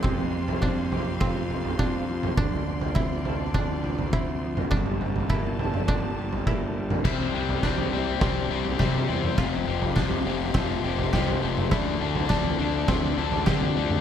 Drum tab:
CC |----------------|----------------|----------------|x---------------|
SD |----------------|----------------|----------------|o---o---o---o---|
T2 |---------------o|---------------o|-------oo------o|------------o--o|
FT |oo-o--o-o-oo---o|oo-o--o-o-oo---o|oooo--o-o--o---o|o--o-o--o--o-o--|
BD |o---o---o---o---|o---o---o---o---|o---o---o---o---|o---o---o---o---|

CC |----------------|----------------|
SD |o---o---o---o---|o---o---o---o---|
T2 |------------o--o|------------o--o|
FT |o--o-o--o--o-o--|o--o-o--o--o-o--|
BD |o---o---o---o---|o---o---o---o---|